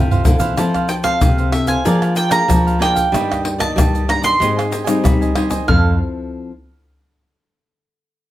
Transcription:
Already playing: nylon-string guitar C3 C4 E4 A4
0.11 trombone F4, cavaquinho A4 C5 F5, surdo, pandeiro, shaker
0.25 nylon-string guitar D3 C4 E4 A4, cavaquinho E4 A4 C5 F5, pandeiro, shaker, surdo
0.39 nylon-string guitar E3, cavaquinho A4 C5 F5, pandeiro, shaker, surdo
0.57 nylon-string guitar F3 C4 E4 A4, cavaquinho E4 A4 C5 F5, pandeiro, tamborim, shaker, surdo
0.74 cavaquinho A4 C5 F5, pandeiro, tamborim, shaker, surdo
0.89 mandolin G5, pandeiro, shaker
1.04 nylon-string guitar C4 A4, cavaquinho A4 C5 F5, mandolin F5, pandeiro, tamborim, shaker, surdo
1.21 nylon-string guitar C3, pandeiro, tamborim, shaker, surdo
1.38 cavaquinho A4 C5 F5, pandeiro, shaker
1.52 nylon-string guitar C4 E4 A4, mandolin E5, muted cavaquinho stroke, pandeiro, tamborim
1.67 cavaquinho A4 C5 F5, mandolin G#5, pandeiro, shaker, surdo
1.85 nylon-string guitar F3 A#3 D4 G#4, cavaquinho G#4 A#4 D5 F5, pandeiro, shaker, surdo
2.02 cavaquinho A#4 D5 F5, pandeiro, tamborim, shaker
2.15 cavaquinho G#4 A#4 D5 F5, mandolin G5, pandeiro, shaker
2.29 nylon-string guitar A#3 D4 G#4, cavaquinho A#4 D5 F5, mandolin A#5, pandeiro, tamborim, shaker
2.48 nylon-string guitar F3, pandeiro, tamborim, shaker, surdo
2.65 cavaquinho A#4 D5 F5, pandeiro, shaker
2.79 nylon-string guitar A#3 D4 G#4, cavaquinho G#4 A#4 D5 F5, mandolin G5, pandeiro, tamborim, surdo
2.95 cavaquinho A#4 D5 F5, pandeiro, shaker, surdo
3.12 nylon-string guitar G2 D#3 G3 A#3 D4, cavaquinho D4 G4 D5 D#5, pandeiro, tamborim, shaker, surdo
3.29 cavaquinho G4 D5 D#5, pandeiro, tamborim, shaker, surdo
3.44 muted cavaquinho stroke, pandeiro
3.58 nylon-string guitar D#3 A#3, cavaquinho G4 D5 D#5, mandolin A5, pandeiro, tamborim, shaker, surdo
3.76 nylon-string guitar G2 G3, pandeiro, tamborim, shaker, surdo
3.93 cavaquinho G4 D5 D#5, pandeiro, shaker
4.08 nylon-string guitar D#3 A#3 D4, mandolin A#5, muted cavaquinho stroke, pandeiro, tamborim
4.22 cavaquinho G4 D5 D#5, mandolin C6, pandeiro, shaker, surdo
4.40 nylon-string guitar G#2 G#3 C4 D#4, cavaquinho G4 C5 D#5 G#5, pandeiro, shaker, surdo
4.56 cavaquinho C5 D#5 G#5, pandeiro, tamborim, shaker
4.70 cavaquinho G4 C5 D#5 G#5, pandeiro, shaker
4.84 nylon-string guitar G3 C4 D#4, cavaquinho C5 D#5 G#5, pandeiro, tamborim, shaker
5.04 nylon-string guitar D#3 G3, pandeiro, tamborim, shaker, surdo
5.21 cavaquinho C5 D#5 G#5, pandeiro, shaker
5.35 nylon-string guitar G3 C4 D#4, cavaquinho G4 C5 D#5 G#5, pandeiro, tamborim, surdo
5.50 cavaquinho C5 D#5 G#5, pandeiro, shaker, surdo
5.67 nylon-string guitar F2 F3 C4 E4 A4, cavaquinho E4 A4 C5 F5, trombone A4, mandolin F6, surdo

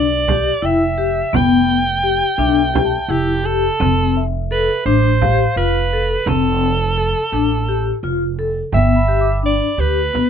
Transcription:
Already playing: upright bass B1, vibraphone D4, soprano saxophone D5
0.28 vibraphone G4, frame drum
0.62 upright bass F1, vibraphone E4, soprano saxophone E5, celesta G5
0.98 vibraphone G4
1.33 upright bass F1, vibraphone B3, soprano saxophone G5, frame drum
2.03 vibraphone G4
2.38 upright bass B1, vibraphone D4, celesta E5
2.63 celesta G5
2.74 vibraphone G4, frame drum
2.85 celesta A5
3.08 upright bass F1, vibraphone E4, soprano saxophone G4
3.44 vibraphone G4, soprano saxophone A4
3.80 upright bass F1, vibraphone C4, frame drum
4.17 celesta E5
4.51 vibraphone A4, soprano saxophone B4
4.86 upright bass A1, vibraphone D4, soprano saxophone C5
5.21 vibraphone G4, celesta F5, frame drum
5.56 upright bass F1, vibraphone F4, soprano saxophone B4
5.93 vibraphone A4
6.26 upright bass F1, vibraphone C4, soprano saxophone A4, frame drum
6.98 vibraphone A4
7.32 upright bass A1, vibraphone D4
7.68 vibraphone G4
8.03 upright bass F1, vibraphone F4
8.38 vibraphone A4, frame drum
8.72 upright bass G1, vibraphone B3, soprano saxophone E5, celesta G5, frame drum
8.96 celesta B5
9.08 vibraphone G4
9.21 celesta D6
9.43 vibraphone D4, soprano saxophone D5
9.78 upright bass D2, vibraphone G4, soprano saxophone B4
10.13 vibraphone B3, frame drum

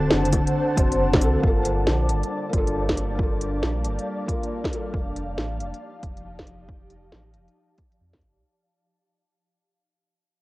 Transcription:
Already playing: sub bass D1, ambient pad D3 D4 C5 F#5 A5, felt piano C4 F#4 A4, synth texture A5
0.11 sub bass F#1, snare
0.25 closed hi-hat
0.33 sub bass D1, kick, closed hi-hat, low bongo, cabasa
0.47 closed hi-hat
0.75 sub bass F#1, felt piano C4 F#4 C5, kick, closed hi-hat, cabasa
0.92 sub bass F#1, closed hi-hat
1.13 kick, snare, low bongo
1.20 sub bass C2, felt piano C4 F#4, closed hi-hat, cabasa
1.24 felt piano A4
1.40 sub bass G1, felt piano A#3 F4, kick
1.45 ambient pad G3, felt piano A4, synth texture D5
1.65 closed hi-hat
1.87 sub bass A#1, snare
2.09 sub bass G1, closed hi-hat
2.23 closed hi-hat
2.41 ambient pad A#3
2.49 felt piano A#3 F4, kick, closed hi-hat
2.53 sub bass G1
2.58 felt piano A4
2.67 closed hi-hat
2.89 ambient pad F5, kick, snare
2.97 closed hi-hat
3.15 sub bass G1, felt piano A#3 F4, kick
3.23 felt piano A4
3.41 closed hi-hat
3.63 sub bass A#1, snare
3.84 sub bass G1, closed hi-hat
3.99 closed hi-hat
4.26 felt piano A#3 F4, kick, closed hi-hat
4.30 felt piano A#4
4.43 closed hi-hat
4.64 kick, snare
4.71 felt piano A#3 F4 A4, closed hi-hat
4.94 sub bass F1, ambient pad F3, kick
5.16 ambient pad D#4, closed hi-hat
5.28 ambient pad G4
5.37 sub bass A1, snare
5.59 sub bass F1, closed hi-hat
5.74 closed hi-hat
6.03 sub bass F1, kick, closed hi-hat
6.17 closed hi-hat
6.39 kick, snare
6.47 closed hi-hat
6.69 sub bass F1, kick
6.90 closed hi-hat
7.12 sub bass A1, snare
7.34 sub bass F1, closed hi-hat
7.48 closed hi-hat
7.78 kick, closed hi-hat
7.92 closed hi-hat
8.01 sub bass F2
8.13 kick, snare
8.21 sub bass F1, closed hi-hat
8.37 sub bass C2

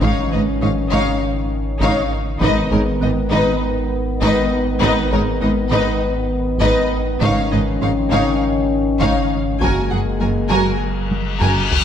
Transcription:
Already playing: sub bass G#1, french horn section D#3 C#4
0.02 double bass section G#1, cello section G#2, synth pluck C#3, viola section D#4, violin section C#5 F5, taiko
0.31 double bass section G#1, cello section G#2, synth pluck C#4, viola section D#4, violin section B4 D#5
0.61 double bass section G#1, cello section G#2, synth pluck F3, viola section D#4, violin section C#5 F5
0.91 double bass section G#1, cello section G#2, synth pluck C#3, viola section D#4, violin section C#5 F5
1.81 double bass section G#1, cello section G#2, synth pluck C#3, viola section D#4, violin section C#5 F5, taiko
2.41 double bass section G#1, sub bass G#1, cello section G#2, french horn section D#3 B3, synth pluck G#3, viola section D#4, violin section B4 D#5, taiko
2.71 double bass section G#1, cello section G#2, viola section D#4, synth pluck G#4, violin section A#4 C#5
3.01 double bass section G#1, cello section G#2, synth pluck B3, viola section D#4, violin section B4 D#5
3.31 double bass section G#1, cello section G#2, synth pluck G#3, viola section D#4, violin section B4 D#5
4.22 double bass section G#1, cello section G#2, synth pluck G#3, viola section D#4, violin section B4 D#5, taiko
4.81 double bass section G#1, cello section G#2, synth pluck G#3, viola section D#4, violin section B4 D#5, taiko
5.12 double bass section G#1, cello section G#2, viola section D#4, synth pluck G#4, violin section A#4 C#5
5.42 double bass section G#1, cello section G#2, synth pluck B3, viola section D#4, violin section B4 D#5
5.72 double bass section G#1, cello section G#2, synth pluck G#3, viola section D#4, violin section B4 D#5
6.61 double bass section G#1, cello section G#2, synth pluck G#3, viola section D#4, violin section B4 D#5, taiko
7.21 double bass section G#1, sub bass G#1, cello section G#2, synth pluck C#3, french horn section D#3 C#4, viola section D#4, violin section C#5 F5, taiko
7.52 double bass section G#1, cello section G#2, synth pluck C#4, viola section D#4, violin section B4 D#5
7.81 double bass section G#1, cello section G#2, synth pluck F3, viola section D#4, violin section C#5 F5
8.10 double bass section G#1, cello section G#2, synth pluck C#3, viola section D#4, violin section C#5 F5
9.01 double bass section G#1, cello section G#2, synth pluck C#3, viola section D#4, violin section C#5 F5, taiko
9.61 double bass section F#1, sub bass F#1, cello section F#2, synth pluck F#3, french horn section G#3 A#3, viola section F#4, violin section A#4 G#5, taiko, reverse cymbal
9.90 double bass section F#1, cello section F#2, synth pluck F#4, viola section F#4, violin section G#4 F#5
10.20 double bass section F#1, cello section F#2, synth pluck A#3, viola section F#4, violin section A#4 G#5
10.50 double bass section F#1, cello section F#2, synth pluck F#3, viola section F#4, violin section A#4 G#5
11.11 taiko high
11.40 double bass section F#1, cello section F#2, synth pluck F#3, viola section F#4, violin section A#4 G#5, taiko low-mid
11.71 taiko low

